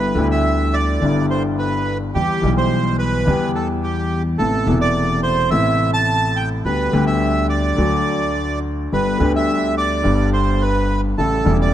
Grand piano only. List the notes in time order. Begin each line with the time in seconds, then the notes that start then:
Already playing: G1 G2 D3 G3 B3 E4
0.15 D2 D3 G3 B3 E4
0.99 G1 G2 D3 G3 B3
1.04 E4
2.15 E2 E3 G3 B3 G4
2.42 B1 B2 E3 G3 G4
3.26 E2 E3 G3 B3 G4
4.39 A1 A2 C3 A3 B3 E4
4.66 E1 E2 C3 A3 B3
4.70 E4
5.50 A1 A2 C3 A3 B3
5.54 E4
6.65 D2 D3 G3 B3 G4
6.93 D2 D3 G3 B3 G4
7.76 D2 D3 F#3 A3
7.80 F#4
8.92 G1 G2 D3 G3 B3 G4
9.17 D2 D3 G3 B3
9.22 G4
10.02 G1 G2 D3 G3 B3
10.06 G4
11.18 A1 A2 C#3 G3 A3 E4
11.44 E1 E2 C#3 G3 A3
11.48 E4